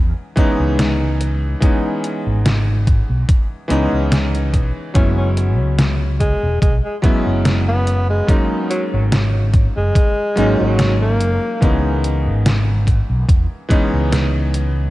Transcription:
Already playing: fretless electric bass E2, electric grand piano E3 G#3 B3 C#4 D#4
0.36 electric grand piano E3 G#3 B3 C#4 D#4, kick, closed hi-hat
0.59 fretless electric bass C#2
0.79 snare, closed hi-hat
1.21 closed hi-hat
1.60 electric grand piano E3 G#3 B3 C#4 D#4, kick, closed hi-hat
2.04 closed hi-hat
2.26 fretless electric bass G#1
2.46 snare, closed hi-hat
2.87 kick, closed hi-hat
3.09 fretless electric bass B1
3.29 kick, closed hi-hat
3.68 fretless electric bass C#2, electric grand piano E3 G#3 B3 C#4 D#4, closed hi-hat
3.92 fretless electric bass C#2
4.12 snare, closed hi-hat
4.35 closed hi-hat
4.54 fretless electric bass B1, kick, closed hi-hat
4.94 fretless electric bass F#1, electric grand piano F#3 G#3 B3 C#4 E4, alto saxophone C#4, kick, closed hi-hat
5.17 alto saxophone C#4
5.37 closed hi-hat
5.59 fretless electric bass C#2
5.79 snare, closed hi-hat
6.20 alto saxophone G#3, kick, closed hi-hat
6.43 fretless electric bass E1
6.61 fretless electric bass B1, alto saxophone G#3, kick, closed hi-hat
6.84 alto saxophone G#3
7.02 electric grand piano F#3 G#3 B3 C#4 E4, kick, closed hi-hat
7.26 fretless electric bass F#1
7.45 snare, closed hi-hat
7.68 alto saxophone B3
7.87 closed hi-hat
8.10 alto saxophone G#3
8.27 electric grand piano F#3 G#3 A#3 C#4 D#4, kick, closed hi-hat
8.70 alto saxophone F#3, closed hi-hat
8.93 fretless electric bass G#1, alto saxophone F#3
9.12 snare, closed hi-hat
9.54 kick, closed hi-hat
9.77 fretless electric bass F#1, alto saxophone G#3
9.95 kick, closed hi-hat
10.35 fretless electric bass G#1, electric grand piano F#3 G#3 A#3 C#4 D#4, closed hi-hat
10.60 fretless electric bass G#1, alto saxophone F#3
10.79 snare, closed hi-hat
11.02 alto saxophone A#3
11.21 fretless electric bass F#1, closed hi-hat
11.61 fretless electric bass C#2, electric grand piano E3 G#3 B3 C#4 D#4, kick, closed hi-hat
12.04 closed hi-hat
12.26 fretless electric bass G#1
12.46 snare, closed hi-hat
12.87 kick, closed hi-hat
13.09 fretless electric bass B1
13.29 fretless electric bass E2, kick, closed hi-hat
13.69 electric grand piano E3 G#3 B3 C#4 D#4, kick, closed hi-hat
13.93 fretless electric bass C#2
14.12 snare, closed hi-hat
14.54 closed hi-hat

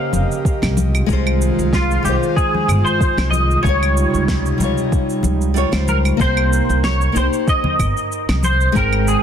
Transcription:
Already playing: analog synth pad C#3 G4 D#5, nylon-string guitar A#3 C#4 G4 C5, clean electric guitar F5
0.13 upright bass F1, high conga, shaker
0.32 shaker
0.45 kick, shaker
0.62 upright bass C2, snare, claves, shaker
0.77 analog synth pad D#3 G#3 F4, high conga, shaker
0.95 claves, shaker
1.06 upright bass C2, nylon-string guitar G#3 D#4 F4, kick, shaker
1.13 nylon-string guitar C5
1.27 claves
1.42 shaker
1.59 upright bass C2, shaker
1.73 clean electric guitar F4, kick, snare, shaker
1.91 shaker
2.03 upright bass C2, nylon-string guitar G#3 D#4, clean electric guitar G4, shaker
2.07 nylon-string guitar F4 C5
2.23 shaker
2.36 clean electric guitar G#4, kick, shaker
2.54 high conga
2.68 upright bass G1, claves, shaker
2.85 clean electric guitar C5, shaker
3.01 kick, shaker
3.17 upright bass C2, snare, claves, shaker
3.31 clean electric guitar D#5, high conga, shaker
3.51 shaker
3.63 upright bass C#2, analog synth pad C3 G3 D#4, nylon-string guitar G3 D#4, clean electric guitar C#5, kick, shaker
3.67 nylon-string guitar F4 C#5
3.83 claves, shaker
3.97 shaker
4.14 upright bass C#2, shaker
4.28 kick, snare, shaker
4.46 shaker
4.58 upright bass C#2, nylon-string guitar G3 D#4, high conga, shaker
4.62 nylon-string guitar F4 C#5
4.78 shaker
4.92 kick, shaker
5.10 shaker
5.23 upright bass C#2, high conga, shaker
5.41 shaker
5.54 nylon-string guitar G3 D#4 F4 C#5, shaker
5.72 upright bass C#2, nylon-string guitar G3 D#4 F4 C5, snare, claves, shaker
5.88 clean electric guitar A#4, high conga, shaker
6.05 claves, shaker
6.17 upright bass C2, nylon-string guitar A#3 D#4, kick, shaker
6.21 nylon-string guitar G4 C5, clean electric guitar C5
6.37 claves
6.53 shaker
6.69 upright bass C2, shaker
6.84 clean electric guitar C#5, snare, shaker
7.01 shaker
7.12 upright bass C2, nylon-string guitar A#3 D#4, shaker
7.17 nylon-string guitar G4 C5, clean electric guitar C5
7.33 shaker
7.48 clean electric guitar D#5, kick, shaker
7.64 high conga, low conga
7.79 upright bass G1, kick, claves, shaker
7.97 shaker
8.12 shaker
8.29 upright bass C2, snare, claves, shaker
8.43 clean electric guitar C5, high conga, shaker
8.61 shaker
8.72 upright bass G#1, nylon-string guitar G#3 D#4 G5, clean electric guitar A#4, kick, shaker
8.78 nylon-string guitar C5
8.93 claves
9.08 clean electric guitar G#4, shaker

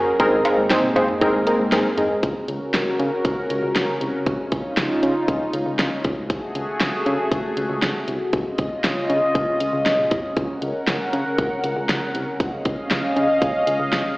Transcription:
Already playing: analog synth pad F#3 C#4 G#4 A#4, synth keys C#4 F#4 G#4 A#4
0.20 fm bass G#1, analog synth pad G#3 A#3 C4, synth keys C4 D#4 G#4 A#4, kick, closed hi-hat
0.32 fm bass G#1
0.45 synth keys C4 D#4 G#4 A#4, closed hi-hat, cowbell
0.58 fm bass G#1
0.70 fm bass G#1, synth keys C4 D#4 G#4 C5, snare, closed hi-hat
0.83 mid tom
0.96 fm bass G#1, synth keys C4 D#4 G#4 C5, kick, closed hi-hat, cowbell
1.08 mid tom
1.21 synth keys C4 D#4 G#4 A#4, kick, closed hi-hat
1.34 fm bass G#1
1.47 synth keys C4 D#4 G#4 A#4, closed hi-hat
1.59 fm bass G#2
1.72 fm bass G#1, synth keys C4 D#4 G#4 A#4, snare, closed hi-hat
1.97 fm bass G#1, synth keys C4 D#4 G#4 A#4, closed hi-hat, mid tom
2.23 fm bass C#2, analog synth pad C#3 C#4 F#4 A#4, kick, closed hi-hat
2.48 fm bass C#2, closed hi-hat
2.74 fm bass C#2, snare, closed hi-hat
2.99 fm bass C#3, closed hi-hat
3.25 fm bass C#2, kick, closed hi-hat
3.50 fm bass C#2, closed hi-hat
3.63 fm bass C#2
3.76 fm bass C#2, snare, closed hi-hat
4.01 fm bass C2, closed hi-hat
4.26 fm bass C#2, analog synth pad D#4 F4, kick, closed hi-hat
4.52 fm bass C#2, kick, closed hi-hat
4.77 fm bass C#2, snare, closed hi-hat
5.03 fm bass C#3, closed hi-hat
5.28 fm bass C#2, kick, closed hi-hat
5.53 fm bass C#2, closed hi-hat
5.66 fm bass C#2
5.79 fm bass C#2, snare, closed hi-hat
6.04 fm bass C#2, analog synth pad A3 F#4 G#4, kick, closed hi-hat
6.30 kick, closed hi-hat
6.55 fm bass C#2, closed hi-hat
6.81 fm bass C#2, snare, closed hi-hat
7.06 fm bass C#3, closed hi-hat
7.31 fm bass C#2, kick, closed hi-hat
7.57 fm bass C#2, closed hi-hat
7.70 fm bass C#2
7.82 fm bass C#2, snare, closed hi-hat
8.08 fm bass C2, closed hi-hat
8.33 fm bass C#2, analog synth pad C#3 C#4 F4 D#5, kick, closed hi-hat
8.58 fm bass C#2, kick, closed hi-hat
8.84 fm bass C#2, snare, closed hi-hat
9.10 fm bass C#3, closed hi-hat
9.35 fm bass C#2, kick, closed hi-hat
9.60 fm bass C#2, closed hi-hat
9.73 fm bass C#2
9.86 fm bass C#2, snare, closed hi-hat
9.98 mid tom
10.11 fm bass C2, kick, closed hi-hat, mid tom
10.37 fm bass C#2, analog synth pad A#4 F#5, kick, closed hi-hat
10.62 fm bass C#2, closed hi-hat
10.88 fm bass C#2, snare, closed hi-hat
11.13 fm bass C#3, closed hi-hat
11.38 fm bass C#2, kick, closed hi-hat
11.64 fm bass C#2, closed hi-hat
11.77 fm bass C#2
11.89 fm bass C#2, snare, closed hi-hat
12.15 fm bass C2, closed hi-hat
12.40 fm bass C#2, analog synth pad C#4 D#5 F5, kick, closed hi-hat
12.65 fm bass C#2, kick, closed hi-hat
12.91 fm bass C#2, snare, closed hi-hat
13.16 fm bass C#3, closed hi-hat
13.42 fm bass C#2, kick, closed hi-hat
13.67 fm bass C#2, closed hi-hat
13.80 fm bass C#2
13.92 fm bass C#2, snare, closed hi-hat

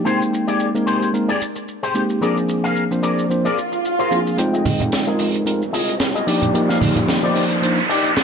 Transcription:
0.05 tine electric piano G#3 A#3 C4 D#4 G5, clean electric guitar G4 G#4 C5, shaker
0.22 shaker
0.32 muted clean electric guitar stroke, shaker
0.47 clean electric guitar G4 G#4 D5, shaker
0.60 shaker
0.74 tine electric piano G#3 A#3 C4 D#4 A#4, shaker
0.86 clean electric guitar G4 G#4 C5, shaker
1.02 shaker
1.13 tine electric piano G#3 A#3 C4 D#4 A#4, shaker
1.28 clean electric guitar G4 G#4 D5, shaker
1.42 shaker
1.55 muted clean electric guitar stroke, shaker
1.68 shaker
1.83 clean electric guitar G4 G#4 C5, shaker
1.94 tine electric piano G#3 A#3 C4 D#4 G4, shaker
2.10 shaker
2.21 tine electric piano F3 A#3 C4 D4 G#4, clean electric guitar G#4 A#4 D5, shaker
2.38 shaker
2.49 muted clean electric guitar stroke, shaker
2.64 clean electric guitar G#4 A#4 F5, shaker
2.76 shaker
2.91 tine electric piano F3 A#3 C4 D4 C5, shaker
3.03 clean electric guitar G#4 A#4 D5, shaker
3.19 shaker
3.29 tine electric piano F3 A#3 C4 D4 C5, swell, shaker
3.45 clean electric guitar G#4 A#4 D5, shaker
3.58 shaker
3.72 muted clean electric guitar stroke, shaker
3.85 shaker
3.99 clean electric guitar G#4 A#4 C5, shaker
4.11 tine electric piano F3 A#3 C4 D4 G#4, shaker
4.27 shaker
4.37 analog synth bass F1, tine electric piano G#3 C4 D#4 F4 G5, closed hi-hat, riser, shaker
4.53 clean electric guitar F4 G#4 D#5, shaker
4.65 open hi-hat, high conga, low conga, shaker
4.80 analog synth bass F1, closed hi-hat, low conga, shaker
4.92 snare, closed hi-hat, shaker
5.07 tine electric piano G#3 C4 D#4 F4 A#4, clean electric guitar F4 G#4 D#5, shaker
5.19 analog synth bass F1, open hi-hat, shaker
5.34 closed hi-hat, shaker
5.46 tine electric piano G#3 C4 D#4 F4 A#4, muted clean electric guitar stroke, closed hi-hat, shaker
5.62 shaker
5.73 analog synth bass C2, clean electric guitar F4 G#4 D#5, open hi-hat, shaker
5.89 closed hi-hat, shaker
6.00 snare, closed hi-hat, shaker
6.15 clean electric guitar F4 G#4 D#5, closed hi-hat, shaker
6.27 tine electric piano F3 A#3 D4 D#4 G4, clean electric guitar D#4 G4 D5, open hi-hat, shaker
6.42 closed hi-hat, low conga, shaker
6.53 analog synth bass D#1, tine electric piano F3 A#3 D#4 G4 D5, closed hi-hat, shaker
6.69 clean electric guitar D#4 G4 F5, snare, shaker
6.81 open hi-hat, high conga, low conga, shaker
6.96 analog synth bass D#1, closed hi-hat, low conga, shaker
7.09 snare, closed hi-hat, shaker
7.23 tine electric piano F3 A#3 D#4 C5 D5, clean electric guitar D#4 G4 D5, shaker
7.36 analog synth bass D#1, open hi-hat, shaker
7.50 closed hi-hat, shaker
7.62 tine electric piano F3 A#3 D4 D#4 C5, muted clean electric guitar stroke, closed hi-hat, shaker
7.79 shaker
7.89 analog synth bass A#1, clean electric guitar D#4 G4 D5, open hi-hat, shaker
8.04 closed hi-hat, shaker
8.16 snare, closed hi-hat, shaker

